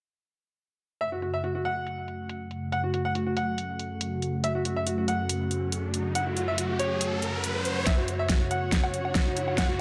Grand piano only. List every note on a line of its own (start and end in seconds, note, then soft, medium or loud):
1.01 1.08 E5 medium
1.12 1.18 F#4 medium
1.22 1.29 F#4 medium
1.34 1.40 E5 medium
1.44 1.51 F#4 medium
1.55 1.61 F#4 medium
1.65 2.64 F#5 medium
2.72 2.79 F#5 medium
2.84 2.90 F#4 medium
2.94 3.01 F#4 medium
3.05 3.11 F#5 medium
3.15 3.22 F#4 medium
3.26 3.33 F#4 medium
3.37 4.36 F#5 medium
4.44 4.51 E5 medium
4.55 4.61 F#4 medium
4.65 4.72 F#4 medium
4.76 4.83 E5 medium
4.87 4.93 F#4 medium
4.98 5.04 F#4 medium
5.08 6.07 F#5 medium
6.15 6.22 F#5 medium
6.26 6.33 F#4 medium
6.37 6.43 F#4 medium
6.48 6.54 E5 medium
6.58 6.65 F#4 medium
6.69 6.75 F#4 medium
6.79 7.78 C#5 medium
7.87 7.93 E5 medium
7.98 8.04 F#4 medium
8.08 8.15 F#4 medium
8.19 8.25 E5 medium
8.29 8.36 F#4 medium
8.41 8.47 F#4 medium
8.51 9.50 F#5 medium
9.58 9.65 F#5 medium
9.69 9.75 F#4 medium